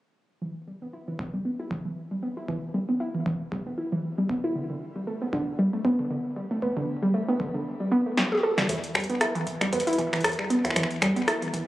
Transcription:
0.42 synth arpeggio sound E3
0.67 synth arpeggio sound G3
0.82 synth arpeggio sound B3
0.93 synth arpeggio sound E4
1.08 synth arpeggio sound E3
1.19 kick
1.34 synth arpeggio sound G3
1.45 synth arpeggio sound B3
1.60 synth arpeggio sound E4
1.71 synth arpeggio sound E3, kick
1.85 synth arpeggio sound E3
2.11 synth arpeggio sound G3
2.23 synth arpeggio sound B3
2.37 synth arpeggio sound E4
2.48 synth arpeggio sound E3, kick
2.74 synth arpeggio sound G3
2.89 synth arpeggio sound B3
3.00 synth arpeggio sound E4
3.15 synth arpeggio sound E3
3.26 synth arpeggio sound E3, kick
3.52 synth arpeggio sound G3, kick
3.66 synth arpeggio sound B3
3.78 synth arpeggio sound E4
3.92 synth arpeggio sound E3
4.18 synth arpeggio sound G3
4.30 synth arpeggio sound B3, kick
4.44 synth arpeggio sound E4
4.55 synth arpeggio sound D3
4.70 synth arpeggio sound D3
4.96 synth arpeggio sound G3
5.07 synth arpeggio sound A3
5.22 synth arpeggio sound B3
5.33 synth arpeggio sound D3, kick
5.59 synth arpeggio sound G3
5.73 synth arpeggio sound A3
5.85 synth arpeggio sound B3, kick
5.99 synth arpeggio sound D3
6.11 synth arpeggio sound D3
6.36 synth arpeggio sound G3
6.51 synth arpeggio sound A3
6.62 synth arpeggio sound B3, kick
6.77 synth arpeggio sound D3
7.03 synth arpeggio sound G3
7.14 synth arpeggio sound A3
7.29 synth arpeggio sound B3
7.40 synth arpeggio sound D3, kick
7.54 synth arpeggio sound D3
7.80 synth arpeggio sound G3
7.92 synth arpeggio sound B3
8.06 synth arpeggio sound A3
8.17 synth arpeggio sound G4, snare
8.32 high tom
8.35 high tom
8.38 high tom
8.40 synth arpeggio sound A4, high tom
8.43 high tom
8.47 high tom
8.51 high tom
8.54 synth arpeggio sound G3, snare, high tom
8.69 fm bass E2, synth arpeggio sound E3, closed hi-hat
8.84 closed hi-hat
8.95 fm bass E2, synth arpeggio sound G3, finger snap, closed hi-hat
9.00 closed hi-hat
9.04 closed hi-hat
9.10 synth arpeggio sound B3, closed hi-hat
9.21 synth arpeggio sound E4, cross-stick, closed hi-hat
9.35 synth arpeggio sound E3, closed hi-hat
9.47 kick, closed hi-hat
9.61 fm bass B1, synth arpeggio sound G3, finger snap, closed hi-hat
9.73 fm bass E2, synth arpeggio sound B3, closed hi-hat
9.80 closed hi-hat
9.87 synth arpeggio sound E4, closed hi-hat
9.93 closed hi-hat
9.98 synth arpeggio sound E3, kick, closed hi-hat
10.13 synth arpeggio sound E3, finger snap, closed hi-hat
10.16 closed hi-hat
10.21 fm bass E2, cross-stick, closed hi-hat
10.24 closed hi-hat
10.29 closed hi-hat
10.32 closed hi-hat
10.39 synth arpeggio sound G3, finger snap
10.50 synth arpeggio sound B3, closed hi-hat
10.65 fm bass E2, synth arpeggio sound E4, finger snap, closed hi-hat
10.70 finger snap
10.76 fm bass E2, synth arpeggio sound E3, finger snap, kick, closed hi-hat
10.83 finger snap
10.91 closed hi-hat
11.02 fm bass E2, synth arpeggio sound G3, finger snap, closed hi-hat
11.16 synth arpeggio sound B3, closed hi-hat
11.28 synth arpeggio sound E4, cross-stick, closed hi-hat
11.42 synth arpeggio sound E3, closed hi-hat
11.54 synth arpeggio sound E3, kick, closed hi-hat

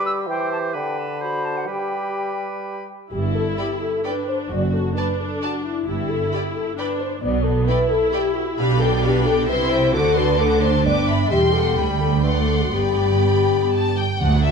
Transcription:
Already playing: bassoon G3, clarinet G4, oboe B4
0.06 flute E6
0.27 bassoon E3, oboe C5, flute G5
0.52 flute A5
0.74 bassoon D3, oboe B4, flute G5
0.98 flute A5
1.21 clarinet F#4, oboe C5, flute B5
1.45 flute A5
1.57 flute F#5
1.67 bassoon G3, clarinet G4, oboe B4, flute G5
3.12 double bass section G1, cello section G2, viola section E4, french horn section G4
3.35 french horn section A4
3.58 french horn section G4, violin section D5 G5 B5
3.80 french horn section A4
4.05 viola section D4, french horn section B4, violin section D5 G5 B5
4.28 french horn section C5
4.51 double bass section F#1, cello section F#2, viola section F#4, french horn section D5
4.74 french horn section A4
4.96 viola section D4, french horn section B4, violin section D5 A5
5.20 french horn section A4
5.42 french horn section F#4, violin section D5 A5
5.65 french horn section E4
5.87 double bass section G1, cello section G2, viola section E4, french horn section G4
6.09 french horn section A4
6.33 french horn section G4, violin section D5 G5 B5
6.55 french horn section A4
6.77 viola section D4, french horn section B4, violin section D5 G5 B5
7.00 french horn section C5
7.22 double bass section B1, cello section B2, viola section B3, french horn section D5
7.44 french horn section A4
7.67 viola section E4, french horn section B4, violin section D5 G5 B5
7.89 french horn section A4
8.12 french horn section G4, violin section D5 G5 B5
8.35 french horn section F#4
8.58 double bass section B1, cello section B2, viola section D4, french horn section G4, violin section B4 F5 B5
8.80 french horn section A4, violin section D5 G5
9.03 french horn section G4, violin section B4 F5 B5
9.25 french horn section A4, violin section D5 G5
9.46 double bass section C2, cello section C3, viola section E4, french horn section B4, violin section C5 E5 C6
9.69 french horn section C5, violin section C5 E5 G5
9.93 double bass section D2, cello section D3, viola section F#4, french horn section A4, violin section C5 F#5 D6
10.16 french horn section B4, violin section D5 A5 C6
10.38 viola section D4, french horn section A4, violin section C5 F#5 D6
10.62 french horn section C5, violin section D5 A5 C6
10.84 double bass section G1, cello section G2, violin section B4 G5 D6, french horn section D5
11.07 violin section D5 B5, french horn section E5
11.30 double bass section E1, cello section E2, viola section G3, french horn section G4, violin section E5 G5 C6
11.53 french horn section A4, violin section F#5
11.77 double bass section D2, cello section D2, french horn section G4, violin section G5 B5
12.00 french horn section A4
12.23 viola section A3, french horn section B4, violin section D5 F#5 C6
12.48 french horn section A4
12.61 french horn section F#4
12.73 double bass section G1, cello section G2, viola section B3, french horn section G4, violin section D5 G5 B5
13.72 violin section A5
13.98 violin section G5
14.21 double bass section D2, cello section D2, timpani D3, viola section A3 F#4, violin section A3 D5 F#5
14.34 violin section D4
14.44 violin section F#4 E5

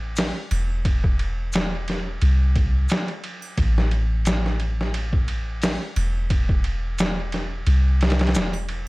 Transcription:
Already playing: 808-style bass A1
0.16 snare, open hi-hat, maracas
0.51 808-style bass E1, ride, triangle
0.85 kick, ride
1.04 kick
1.19 ride
1.53 snare, ride, maracas
1.88 snare, ride
2.22 808-style bass C2, ride
2.56 kick, ride
2.89 snare, ride, maracas
3.08 ride
3.24 ride
3.42 triangle
3.58 808-style bass A1, kick, ride
3.78 snare
3.91 ride
4.25 snare, ride, maracas
4.46 snare
4.60 ride
4.81 snare
4.94 ride
5.13 kick
5.28 ride
5.62 snare, open hi-hat, maracas
5.96 808-style bass E1, ride, triangle
6.30 kick, ride
6.49 kick
6.64 ride
6.98 snare, ride, maracas
7.32 snare, ride
7.67 808-style bass C2, ride
8.01 snare, ride
8.10 snare, ride
8.19 snare, ride
8.27 snare, ride
8.35 808-style bass E1, snare, ride, maracas
8.53 ride, triangle
8.69 ride

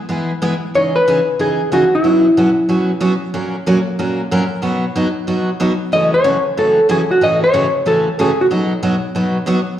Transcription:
0.09 steel-string acoustic guitar E3 G#3 B3 E4 G#4
0.42 steel-string acoustic guitar E3 G#3 B3 E4 G#4
0.74 steel-string acoustic guitar C#3 E3 D#4 G#4, hollow-body jazz guitar C#5
0.96 hollow-body jazz guitar B4
1.08 steel-string acoustic guitar C#3 E3 D#4 G#4
1.39 steel-string acoustic guitar C#3 E3 D#4 G#4, hollow-body jazz guitar G#4
1.72 steel-string acoustic guitar C#3 E3 D#4 G#4, hollow-body jazz guitar F#4
1.95 hollow-body jazz guitar E4
2.04 steel-string acoustic guitar B2 F#3 B3 C#4 F#4
2.37 steel-string acoustic guitar B2 F#3 B3 C#4 F#4
2.69 steel-string acoustic guitar B2 F#3 B3 C#4 F#4
3.00 steel-string acoustic guitar B2 F#3 B3 C#4 F#4
3.34 steel-string acoustic guitar A#2 F#3 A#3 C#4 F#4 A#4
3.66 steel-string acoustic guitar A#2 F#3 A#3 C#4 F#4 A#4
3.99 steel-string acoustic guitar A#2 F#3 A#3 C#4 F#4 A#4
4.31 steel-string acoustic guitar A#2 F#3 A#3 C#4 F#4 A#4
4.62 steel-string acoustic guitar B2 F#3 B3 D#4 F#4
4.96 steel-string acoustic guitar B2 F#3 B3 D#4 F#4
5.27 steel-string acoustic guitar B2 F#3 B3 D#4 F#4
5.60 steel-string acoustic guitar B2 F#3 B3 D#4 F#4
5.92 steel-string acoustic guitar F#2 C#3 E3 A3 C#4 F#4, hollow-body jazz guitar D#5
6.14 hollow-body jazz guitar C#5
6.24 steel-string acoustic guitar F#2 C#3 E3 A3 C#4 F#4
6.57 steel-string acoustic guitar F#2 C#3 E3 A3 C#4 F#4, hollow-body jazz guitar A4
6.89 steel-string acoustic guitar F#2 C#3 E3 A3 C#4 F#4, hollow-body jazz guitar G#4
7.11 hollow-body jazz guitar F#4
7.21 steel-string acoustic guitar A2 C#3 E3 A3 C#4 F#4, hollow-body jazz guitar D#5
7.44 hollow-body jazz guitar C#5
7.53 steel-string acoustic guitar A2 C#3 E3 A3 C#4 F#4
7.85 steel-string acoustic guitar A2 C#3 E3 A3 C#4 F#4, hollow-body jazz guitar A4
8.19 steel-string acoustic guitar A2 C#3 E3 A3 C#4 F#4, hollow-body jazz guitar G#4
8.41 hollow-body jazz guitar F#4
8.51 steel-string acoustic guitar B2 F#3 B3 D#4 F#4
8.83 steel-string acoustic guitar B2 F#3 B3 D#4 F#4
9.15 steel-string acoustic guitar B2 F#3 B3 D#4 F#4
9.46 steel-string acoustic guitar B2 F#3 B3 D#4 F#4

